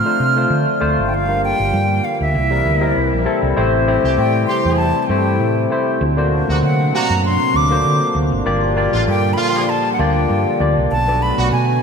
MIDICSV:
0, 0, Header, 1, 6, 480
1, 0, Start_track
1, 0, Tempo, 612245
1, 877, Time_signature, 4, 2, 24, 8
1, 9272, End_track
2, 0, Start_track
2, 0, Title_t, "Flute"
2, 0, Program_c, 0, 73
2, 0, Note_on_c, 0, 89, 103
2, 641, Note_off_c, 0, 89, 0
2, 832, Note_on_c, 0, 79, 73
2, 896, Note_on_c, 0, 77, 96
2, 908, Note_off_c, 0, 79, 0
2, 1127, Note_off_c, 0, 77, 0
2, 1131, Note_on_c, 0, 79, 115
2, 1602, Note_on_c, 0, 77, 92
2, 1614, Note_off_c, 0, 79, 0
2, 1730, Note_off_c, 0, 77, 0
2, 1736, Note_on_c, 0, 76, 99
2, 2422, Note_off_c, 0, 76, 0
2, 3277, Note_on_c, 0, 79, 99
2, 3499, Note_off_c, 0, 79, 0
2, 3504, Note_on_c, 0, 84, 99
2, 3731, Note_off_c, 0, 84, 0
2, 3735, Note_on_c, 0, 81, 100
2, 3939, Note_off_c, 0, 81, 0
2, 3939, Note_on_c, 0, 81, 63
2, 3972, Note_on_c, 0, 79, 84
2, 3984, Note_off_c, 0, 81, 0
2, 4466, Note_off_c, 0, 79, 0
2, 5205, Note_on_c, 0, 78, 93
2, 5453, Note_on_c, 0, 82, 94
2, 5465, Note_off_c, 0, 78, 0
2, 5681, Note_off_c, 0, 82, 0
2, 5686, Note_on_c, 0, 84, 109
2, 5930, Note_on_c, 0, 86, 112
2, 5942, Note_off_c, 0, 84, 0
2, 6404, Note_off_c, 0, 86, 0
2, 7124, Note_on_c, 0, 79, 107
2, 7317, Note_on_c, 0, 83, 70
2, 7329, Note_off_c, 0, 79, 0
2, 7362, Note_on_c, 0, 84, 105
2, 7374, Note_off_c, 0, 83, 0
2, 7600, Note_on_c, 0, 81, 95
2, 7611, Note_off_c, 0, 84, 0
2, 7784, Note_off_c, 0, 81, 0
2, 7788, Note_on_c, 0, 78, 61
2, 7838, Note_on_c, 0, 79, 90
2, 7849, Note_off_c, 0, 78, 0
2, 8316, Note_off_c, 0, 79, 0
2, 8557, Note_on_c, 0, 81, 110
2, 8799, Note_on_c, 0, 83, 101
2, 8811, Note_off_c, 0, 81, 0
2, 9026, Note_off_c, 0, 83, 0
2, 9030, Note_on_c, 0, 80, 102
2, 9255, Note_off_c, 0, 80, 0
2, 9272, End_track
3, 0, Start_track
3, 0, Title_t, "Tine electric piano"
3, 0, Program_c, 1, 4
3, 0, Control_c, 1, 64, 127
3, 0, Note_on_c, 1, 57, 71
3, 0, Note_on_c, 1, 62, 56
3, 0, Note_on_c, 1, 65, 64
3, 0, Note_on_c, 1, 72, 75
3, 39, Note_off_c, 1, 57, 0
3, 39, Note_on_c, 1, 57, 67
3, 42, Note_off_c, 1, 62, 0
3, 42, Note_on_c, 1, 62, 68
3, 46, Note_off_c, 1, 65, 0
3, 46, Note_on_c, 1, 65, 66
3, 48, Note_off_c, 1, 72, 0
3, 48, Note_on_c, 1, 72, 83
3, 262, Note_off_c, 1, 57, 0
3, 264, Note_off_c, 1, 62, 0
3, 265, Note_off_c, 1, 65, 0
3, 266, Note_off_c, 1, 72, 0
3, 285, Note_on_c, 1, 57, 73
3, 290, Note_on_c, 1, 62, 72
3, 291, Note_on_c, 1, 65, 67
3, 296, Note_on_c, 1, 72, 86
3, 610, Note_off_c, 1, 57, 0
3, 613, Note_off_c, 1, 62, 0
3, 613, Note_off_c, 1, 65, 0
3, 616, Note_off_c, 1, 72, 0
3, 631, Note_on_c, 1, 57, 91
3, 631, Note_on_c, 1, 62, 77
3, 637, Note_on_c, 1, 65, 86
3, 639, Note_on_c, 1, 72, 98
3, 874, Note_off_c, 1, 57, 0
3, 874, Note_off_c, 1, 62, 0
3, 877, Note_off_c, 1, 65, 0
3, 878, Note_off_c, 1, 72, 0
3, 888, Control_c, 1, 64, 0
3, 1005, Note_on_c, 1, 62, 70
3, 1007, Note_on_c, 1, 55, 71
3, 1009, Note_on_c, 1, 65, 69
3, 1013, Note_on_c, 1, 70, 72
3, 1019, Control_c, 1, 64, 127
3, 1838, Note_off_c, 1, 55, 0
3, 1838, Note_off_c, 1, 62, 0
3, 1840, Note_off_c, 1, 65, 0
3, 1842, Note_off_c, 1, 70, 0
3, 1849, Control_c, 1, 64, 0
3, 1964, Note_on_c, 1, 55, 78
3, 1966, Note_on_c, 1, 60, 70
3, 1970, Note_on_c, 1, 64, 68
3, 1975, Note_on_c, 1, 70, 87
3, 2006, Control_c, 1, 64, 127
3, 2186, Note_off_c, 1, 55, 0
3, 2187, Note_off_c, 1, 60, 0
3, 2189, Note_off_c, 1, 64, 0
3, 2192, Note_off_c, 1, 70, 0
3, 2198, Note_on_c, 1, 55, 75
3, 2203, Note_on_c, 1, 60, 73
3, 2206, Note_on_c, 1, 64, 74
3, 2210, Note_on_c, 1, 70, 88
3, 2528, Note_off_c, 1, 55, 0
3, 2531, Note_off_c, 1, 60, 0
3, 2532, Note_off_c, 1, 64, 0
3, 2534, Note_off_c, 1, 70, 0
3, 2548, Note_on_c, 1, 55, 95
3, 2553, Note_on_c, 1, 60, 85
3, 2555, Note_on_c, 1, 64, 88
3, 2556, Note_on_c, 1, 69, 102
3, 2788, Note_off_c, 1, 60, 0
3, 2788, Note_off_c, 1, 64, 0
3, 2793, Note_on_c, 1, 57, 96
3, 2794, Note_off_c, 1, 55, 0
3, 2797, Note_on_c, 1, 64, 88
3, 2798, Note_off_c, 1, 69, 0
3, 2798, Note_on_c, 1, 60, 88
3, 2801, Note_on_c, 1, 67, 95
3, 2803, Note_on_c, 1, 72, 117
3, 2810, Control_c, 1, 64, 0
3, 2957, Control_c, 1, 64, 127
3, 3019, Note_off_c, 1, 57, 0
3, 3021, Note_off_c, 1, 64, 0
3, 3022, Note_off_c, 1, 60, 0
3, 3023, Note_off_c, 1, 67, 0
3, 3024, Note_off_c, 1, 72, 0
3, 3036, Note_on_c, 1, 57, 86
3, 3040, Note_on_c, 1, 60, 81
3, 3042, Note_on_c, 1, 64, 77
3, 3045, Note_on_c, 1, 67, 76
3, 3045, Note_on_c, 1, 72, 95
3, 3261, Note_off_c, 1, 57, 0
3, 3263, Note_off_c, 1, 60, 0
3, 3264, Note_off_c, 1, 64, 0
3, 3265, Note_off_c, 1, 67, 0
3, 3265, Note_off_c, 1, 72, 0
3, 3276, Note_on_c, 1, 57, 65
3, 3278, Note_on_c, 1, 60, 63
3, 3280, Note_on_c, 1, 64, 62
3, 3283, Note_on_c, 1, 72, 63
3, 3285, Note_on_c, 1, 67, 65
3, 3337, Note_off_c, 1, 72, 0
3, 3337, Note_on_c, 1, 74, 73
3, 3947, Note_off_c, 1, 57, 0
3, 3947, Note_off_c, 1, 60, 0
3, 3948, Note_off_c, 1, 64, 0
3, 3951, Note_off_c, 1, 67, 0
3, 3977, Note_off_c, 1, 74, 0
3, 3993, Note_on_c, 1, 57, 87
3, 3995, Note_on_c, 1, 60, 76
3, 4000, Note_on_c, 1, 64, 76
3, 4003, Note_on_c, 1, 67, 80
3, 4004, Note_on_c, 1, 72, 94
3, 4442, Note_off_c, 1, 57, 0
3, 4443, Note_off_c, 1, 60, 0
3, 4445, Note_off_c, 1, 64, 0
3, 4447, Note_off_c, 1, 67, 0
3, 4448, Note_off_c, 1, 72, 0
3, 4474, Note_on_c, 1, 57, 79
3, 4479, Note_on_c, 1, 60, 74
3, 4483, Note_on_c, 1, 64, 70
3, 4486, Note_on_c, 1, 67, 73
3, 4487, Note_on_c, 1, 72, 92
3, 4717, Note_off_c, 1, 57, 0
3, 4720, Note_off_c, 1, 60, 0
3, 4721, Note_off_c, 1, 64, 0
3, 4723, Note_off_c, 1, 67, 0
3, 4723, Note_off_c, 1, 72, 0
3, 4730, Control_c, 1, 64, 0
3, 4838, Note_on_c, 1, 58, 96
3, 4841, Note_on_c, 1, 62, 88
3, 4845, Note_on_c, 1, 66, 80
3, 4846, Note_on_c, 1, 57, 83
3, 4847, Note_on_c, 1, 72, 97
3, 4864, Control_c, 1, 64, 127
3, 5722, Note_off_c, 1, 58, 0
3, 5724, Note_off_c, 1, 62, 0
3, 5726, Note_off_c, 1, 57, 0
3, 5726, Note_off_c, 1, 66, 0
3, 5727, Note_off_c, 1, 72, 0
3, 6041, Note_on_c, 1, 58, 77
3, 6042, Note_on_c, 1, 62, 73
3, 6047, Note_on_c, 1, 66, 71
3, 6048, Note_on_c, 1, 69, 71
3, 6051, Note_on_c, 1, 72, 86
3, 6592, Note_off_c, 1, 58, 0
3, 6592, Note_off_c, 1, 62, 0
3, 6595, Note_off_c, 1, 66, 0
3, 6595, Note_off_c, 1, 69, 0
3, 6596, Note_off_c, 1, 72, 0
3, 6628, Note_on_c, 1, 58, 106
3, 6630, Note_on_c, 1, 62, 90
3, 6633, Note_on_c, 1, 65, 93
3, 6636, Note_on_c, 1, 74, 114
3, 6637, Note_on_c, 1, 67, 94
3, 6649, Control_c, 1, 64, 0
3, 6800, Control_c, 1, 64, 127
3, 6856, Note_off_c, 1, 58, 0
3, 6857, Note_off_c, 1, 62, 0
3, 6858, Note_off_c, 1, 65, 0
3, 6860, Note_off_c, 1, 67, 0
3, 6860, Note_off_c, 1, 74, 0
3, 6869, Note_on_c, 1, 58, 87
3, 6873, Note_on_c, 1, 62, 79
3, 6875, Note_on_c, 1, 65, 88
3, 6877, Note_on_c, 1, 67, 72
3, 6881, Note_on_c, 1, 74, 88
3, 7096, Note_off_c, 1, 58, 0
3, 7098, Note_off_c, 1, 62, 0
3, 7099, Note_off_c, 1, 65, 0
3, 7100, Note_off_c, 1, 67, 0
3, 7102, Note_off_c, 1, 74, 0
3, 7116, Note_on_c, 1, 58, 69
3, 7118, Note_on_c, 1, 62, 60
3, 7120, Note_on_c, 1, 65, 57
3, 7122, Note_on_c, 1, 67, 66
3, 7125, Note_on_c, 1, 69, 71
3, 7784, Note_off_c, 1, 58, 0
3, 7785, Note_off_c, 1, 62, 0
3, 7786, Note_off_c, 1, 65, 0
3, 7787, Note_off_c, 1, 67, 0
3, 7788, Note_off_c, 1, 69, 0
3, 7833, Note_on_c, 1, 58, 88
3, 7835, Note_on_c, 1, 62, 84
3, 7835, Note_on_c, 1, 65, 70
3, 7839, Note_on_c, 1, 67, 73
3, 7842, Note_on_c, 1, 74, 99
3, 8280, Note_off_c, 1, 58, 0
3, 8281, Note_off_c, 1, 62, 0
3, 8281, Note_off_c, 1, 65, 0
3, 8282, Note_off_c, 1, 67, 0
3, 8284, Note_off_c, 1, 74, 0
3, 8312, Note_on_c, 1, 62, 71
3, 8313, Note_on_c, 1, 58, 72
3, 8315, Note_on_c, 1, 65, 72
3, 8320, Note_on_c, 1, 74, 84
3, 8321, Note_on_c, 1, 67, 66
3, 8554, Note_off_c, 1, 58, 0
3, 8554, Note_off_c, 1, 62, 0
3, 8555, Note_off_c, 1, 65, 0
3, 8557, Note_off_c, 1, 74, 0
3, 8558, Note_off_c, 1, 67, 0
3, 8566, Control_c, 1, 64, 0
3, 8684, Note_on_c, 1, 59, 76
3, 8686, Note_on_c, 1, 62, 65
3, 8686, Note_on_c, 1, 66, 62
3, 8690, Note_on_c, 1, 69, 69
3, 8694, Note_on_c, 1, 74, 81
3, 8704, Control_c, 1, 64, 127
3, 9272, Note_off_c, 1, 59, 0
3, 9272, Note_off_c, 1, 62, 0
3, 9272, Note_off_c, 1, 66, 0
3, 9272, Note_off_c, 1, 69, 0
3, 9272, Note_off_c, 1, 74, 0
3, 9272, End_track
4, 0, Start_track
4, 0, Title_t, "Horn section"
4, 0, Program_c, 2, 61
4, 3170, Note_on_c, 2, 52, 82
4, 3172, Note_on_c, 2, 60, 91
4, 3172, Note_on_c, 2, 67, 98
4, 3240, Note_off_c, 2, 52, 0
4, 3242, Note_off_c, 2, 60, 0
4, 3242, Note_off_c, 2, 67, 0
4, 3519, Note_on_c, 2, 67, 106
4, 3520, Note_on_c, 2, 52, 93
4, 3520, Note_on_c, 2, 60, 101
4, 3834, Note_off_c, 2, 52, 0
4, 3834, Note_off_c, 2, 60, 0
4, 3834, Note_off_c, 2, 67, 0
4, 5089, Note_on_c, 2, 58, 91
4, 5090, Note_on_c, 2, 66, 98
4, 5093, Note_on_c, 2, 48, 84
4, 5160, Note_off_c, 2, 58, 0
4, 5160, Note_off_c, 2, 66, 0
4, 5162, Note_off_c, 2, 48, 0
4, 5439, Note_on_c, 2, 48, 107
4, 5441, Note_on_c, 2, 58, 95
4, 5441, Note_on_c, 2, 66, 117
4, 5592, Note_off_c, 2, 48, 0
4, 5593, Note_off_c, 2, 66, 0
4, 5594, Note_off_c, 2, 58, 0
4, 6998, Note_on_c, 2, 50, 92
4, 6998, Note_on_c, 2, 58, 91
4, 7002, Note_on_c, 2, 65, 101
4, 7072, Note_off_c, 2, 50, 0
4, 7072, Note_off_c, 2, 58, 0
4, 7074, Note_off_c, 2, 65, 0
4, 7350, Note_on_c, 2, 58, 93
4, 7350, Note_on_c, 2, 65, 121
4, 7352, Note_on_c, 2, 50, 107
4, 7557, Note_off_c, 2, 58, 0
4, 7557, Note_off_c, 2, 65, 0
4, 7558, Note_off_c, 2, 50, 0
4, 8921, Note_on_c, 2, 66, 104
4, 8923, Note_on_c, 2, 59, 87
4, 8924, Note_on_c, 2, 50, 97
4, 8993, Note_off_c, 2, 66, 0
4, 8994, Note_off_c, 2, 50, 0
4, 8994, Note_off_c, 2, 59, 0
4, 9272, End_track
5, 0, Start_track
5, 0, Title_t, "Analog synth pad"
5, 0, Program_c, 3, 89
5, 0, Note_on_c, 3, 50, 71
5, 0, Note_on_c, 3, 53, 64
5, 0, Note_on_c, 3, 57, 72
5, 0, Note_on_c, 3, 60, 65
5, 0, Note_on_c, 3, 65, 80
5, 845, Note_off_c, 3, 57, 0
5, 861, Note_off_c, 3, 60, 0
5, 880, Note_on_c, 3, 58, 67
5, 881, Note_on_c, 3, 55, 66
5, 1812, Note_off_c, 3, 50, 0
5, 1813, Note_off_c, 3, 53, 0
5, 1814, Note_off_c, 3, 65, 0
5, 1837, Note_on_c, 3, 52, 68
5, 1837, Note_on_c, 3, 64, 84
5, 1842, Note_on_c, 3, 48, 75
5, 2778, Note_off_c, 3, 55, 0
5, 2782, Note_off_c, 3, 58, 0
5, 2782, Note_off_c, 3, 64, 0
5, 2783, Note_off_c, 3, 52, 0
5, 2784, Note_off_c, 3, 48, 0
5, 2788, Note_on_c, 3, 55, 68
5, 2792, Note_on_c, 3, 52, 76
5, 2792, Note_on_c, 3, 64, 88
5, 2793, Note_on_c, 3, 48, 72
5, 2794, Note_on_c, 3, 60, 62
5, 4695, Note_off_c, 3, 55, 0
5, 4697, Note_off_c, 3, 52, 0
5, 4697, Note_off_c, 3, 64, 0
5, 4698, Note_off_c, 3, 48, 0
5, 4715, Note_on_c, 3, 48, 73
5, 4715, Note_on_c, 3, 54, 70
5, 4719, Note_on_c, 3, 62, 84
5, 4722, Note_on_c, 3, 46, 68
5, 6604, Note_off_c, 3, 60, 0
5, 6617, Note_off_c, 3, 48, 0
5, 6617, Note_off_c, 3, 54, 0
5, 6619, Note_off_c, 3, 62, 0
5, 6626, Note_on_c, 3, 50, 74
5, 6627, Note_on_c, 3, 53, 69
5, 6627, Note_on_c, 3, 55, 67
5, 6627, Note_on_c, 3, 65, 87
5, 8525, Note_off_c, 3, 46, 0
5, 8530, Note_off_c, 3, 53, 0
5, 8530, Note_off_c, 3, 55, 0
5, 8530, Note_off_c, 3, 65, 0
5, 8557, Note_on_c, 3, 57, 63
5, 8560, Note_on_c, 3, 54, 63
5, 8561, Note_on_c, 3, 66, 88
5, 8561, Note_on_c, 3, 71, 72
5, 9272, Note_off_c, 3, 50, 0
5, 9272, Note_off_c, 3, 54, 0
5, 9272, Note_off_c, 3, 57, 0
5, 9272, Note_off_c, 3, 66, 0
5, 9272, Note_off_c, 3, 71, 0
5, 9272, End_track
6, 0, Start_track
6, 0, Title_t, "Fingered electric bass"
6, 0, Program_c, 4, 33
6, 156, Note_on_c, 4, 48, 82
6, 358, Note_off_c, 4, 48, 0
6, 394, Note_on_c, 4, 50, 95
6, 504, Note_off_c, 4, 50, 0
6, 640, Note_on_c, 4, 38, 99
6, 748, Note_off_c, 4, 38, 0
6, 773, Note_on_c, 4, 32, 84
6, 878, Note_off_c, 4, 32, 0
6, 878, Note_on_c, 4, 31, 106
6, 1189, Note_off_c, 4, 31, 0
6, 1252, Note_on_c, 4, 31, 87
6, 1343, Note_off_c, 4, 31, 0
6, 1360, Note_on_c, 4, 43, 107
6, 1561, Note_off_c, 4, 43, 0
6, 1729, Note_on_c, 4, 38, 90
6, 1841, Note_on_c, 4, 36, 116
6, 1853, Note_off_c, 4, 38, 0
6, 2042, Note_off_c, 4, 36, 0
6, 2082, Note_on_c, 4, 38, 90
6, 2283, Note_off_c, 4, 38, 0
6, 2323, Note_on_c, 4, 36, 85
6, 2431, Note_off_c, 4, 36, 0
6, 2457, Note_on_c, 4, 34, 84
6, 2546, Note_off_c, 4, 34, 0
6, 2686, Note_on_c, 4, 36, 87
6, 2780, Note_off_c, 4, 36, 0
6, 2802, Note_on_c, 4, 33, 105
6, 3112, Note_off_c, 4, 33, 0
6, 3166, Note_on_c, 4, 36, 88
6, 3260, Note_off_c, 4, 36, 0
6, 3276, Note_on_c, 4, 45, 96
6, 3480, Note_off_c, 4, 45, 0
6, 3647, Note_on_c, 4, 40, 84
6, 3850, Note_off_c, 4, 40, 0
6, 3993, Note_on_c, 4, 43, 88
6, 4233, Note_off_c, 4, 43, 0
6, 4233, Note_on_c, 4, 45, 88
6, 4438, Note_off_c, 4, 45, 0
6, 4712, Note_on_c, 4, 38, 108
6, 5026, Note_off_c, 4, 38, 0
6, 5088, Note_on_c, 4, 38, 87
6, 5182, Note_off_c, 4, 38, 0
6, 5196, Note_on_c, 4, 50, 111
6, 5399, Note_off_c, 4, 50, 0
6, 5564, Note_on_c, 4, 42, 95
6, 5768, Note_off_c, 4, 42, 0
6, 5913, Note_on_c, 4, 38, 86
6, 6117, Note_off_c, 4, 38, 0
6, 6151, Note_on_c, 4, 50, 92
6, 6263, Note_off_c, 4, 50, 0
6, 6389, Note_on_c, 4, 38, 92
6, 6502, Note_off_c, 4, 38, 0
6, 6522, Note_on_c, 4, 32, 93
6, 6618, Note_off_c, 4, 32, 0
6, 6633, Note_on_c, 4, 31, 112
6, 6946, Note_off_c, 4, 31, 0
6, 7003, Note_on_c, 4, 33, 89
6, 7098, Note_off_c, 4, 33, 0
6, 7117, Note_on_c, 4, 43, 104
6, 7319, Note_off_c, 4, 43, 0
6, 7834, Note_on_c, 4, 38, 87
6, 8037, Note_off_c, 4, 38, 0
6, 8074, Note_on_c, 4, 43, 95
6, 8184, Note_off_c, 4, 43, 0
6, 8313, Note_on_c, 4, 38, 93
6, 8423, Note_off_c, 4, 38, 0
6, 8445, Note_on_c, 4, 36, 90
6, 8538, Note_off_c, 4, 36, 0
6, 8558, Note_on_c, 4, 35, 91
6, 8867, Note_off_c, 4, 35, 0
6, 8922, Note_on_c, 4, 35, 87
6, 9016, Note_off_c, 4, 35, 0
6, 9034, Note_on_c, 4, 47, 106
6, 9236, Note_off_c, 4, 47, 0
6, 9272, End_track
0, 0, End_of_file